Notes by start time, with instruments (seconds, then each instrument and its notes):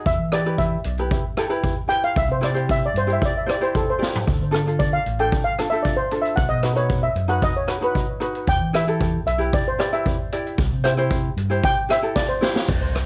0.06 fingered electric bass E2, steel pan E5, kick, closed hi-hat
0.19 fingered electric bass E3
0.32 ukulele E4 G4 B4, steel pan D5, cross-stick, closed hi-hat
0.46 ukulele E4 G4 B4, closed hi-hat
0.58 steel pan E5, kick, closed hi-hat
0.84 fingered electric bass B1, closed hi-hat
0.97 ukulele E4 G4 B4, closed hi-hat
1.11 kick, closed hi-hat
1.37 ukulele E4 G4 A4, cross-stick, closed hi-hat
1.49 ukulele E4 G4 B4, closed hi-hat
1.63 kick, closed hi-hat
1.88 ukulele E4 G4 B4, steel pan G5, closed hi-hat
2.03 steel pan F5, closed hi-hat
2.16 fingered electric bass C2, steel pan E5, kick, closed hi-hat
2.29 fingered electric bass C3, steel pan C5
2.41 ukulele E4 G4 C5, steel pan D5, cross-stick, closed hi-hat
2.54 ukulele E4 G4 C5, closed hi-hat
2.69 steel pan E5, kick, closed hi-hat
2.86 steel pan D5
2.94 fingered electric bass G2, steel pan C5, closed hi-hat
3.07 ukulele E4 G4 C5, closed hi-hat
3.13 steel pan E5
3.22 steel pan D5, kick, closed hi-hat
3.37 steel pan E5
3.46 ukulele E4 G4 C5, cross-stick, closed hi-hat
3.50 steel pan D5
3.61 ukulele E4 G4 C5, steel pan C5, closed hi-hat
3.75 steel pan A4, kick, closed hi-hat
3.90 steel pan C5
3.99 ukulele E4 G4 D5, snare
4.16 floor tom
4.27 fingered electric bass D2, kick, closed hi-hat
4.41 fingered electric bass D3
4.51 ukulele D4 F4 A4, cross-stick, closed hi-hat
4.66 ukulele D4 F4 A4, closed hi-hat
4.79 steel pan D5, kick, closed hi-hat
4.93 steel pan F5
5.06 fingered electric bass A1, closed hi-hat
5.19 ukulele D4 F4 A4, steel pan G5, closed hi-hat
5.32 kick, closed hi-hat
5.44 steel pan F5
5.58 ukulele D4 F4 A4, cross-stick, closed hi-hat
5.70 ukulele D4 F4 A4, steel pan E5, closed hi-hat
5.83 steel pan D5, kick, closed hi-hat
5.97 steel pan C5
6.11 ukulele D4 F4 A4, closed hi-hat
6.22 steel pan E5, closed hi-hat
6.36 fingered electric bass B1, steel pan F#5, kick, closed hi-hat
6.49 fingered electric bass B2, steel pan D#5
6.63 ukulele D#4 F#4 B4, cross-stick, closed hi-hat
6.75 ukulele D#4 F#4 B4, steel pan C#5, closed hi-hat
6.90 kick, closed hi-hat
7.03 steel pan E5
7.16 fingered electric bass F#2, closed hi-hat
7.28 ukulele D#4 F#4 B4, steel pan F#5, closed hi-hat
7.42 steel pan D#5, kick, closed hi-hat
7.57 steel pan C#5
7.67 ukulele D#4 F#4 B4, cross-stick, closed hi-hat
7.81 ukulele D#4 F#4 B4, steel pan B4, closed hi-hat
7.95 kick, closed hi-hat
8.20 ukulele D#4 F#4 B4, closed hi-hat
8.35 closed hi-hat
8.47 fingered electric bass E2, steel pan G5, kick, closed hi-hat
8.60 fingered electric bass E3
8.73 ukulele E4 G4 B4, steel pan E5, cross-stick, closed hi-hat
8.87 ukulele E4 G4 A4, closed hi-hat
9.00 kick, closed hi-hat
9.26 fingered electric bass B1, steel pan E5, closed hi-hat
9.38 ukulele E4 G4 B4, closed hi-hat
9.53 steel pan D5, kick, closed hi-hat
9.68 steel pan C5
9.79 ukulele E4 G4 B4, steel pan D5, cross-stick, closed hi-hat
9.92 ukulele E4 G4 B4, steel pan E5, closed hi-hat
10.06 kick, closed hi-hat
10.32 ukulele E4 G4 D5, closed hi-hat
10.46 closed hi-hat
10.58 fingered electric bass C2, kick, closed hi-hat
10.72 fingered electric bass C3
10.84 ukulele E4 G4 C5, cross-stick, closed hi-hat
10.97 ukulele E4 G4 C5, closed hi-hat
11.11 kick, closed hi-hat
11.37 fingered electric bass G2, closed hi-hat
11.50 ukulele E4 G4 C5, closed hi-hat
11.64 steel pan G5, kick, closed hi-hat
11.89 ukulele E4 G4 C5, steel pan E5, cross-stick, closed hi-hat
12.02 ukulele E4 G4 A4, closed hi-hat
12.16 steel pan D5, kick, snare
12.29 steel pan C5
12.41 ukulele E4 G4 C5, snare
12.56 snare
12.69 fingered electric bass C2, kick, crash
12.95 cross-stick, closed hi-hat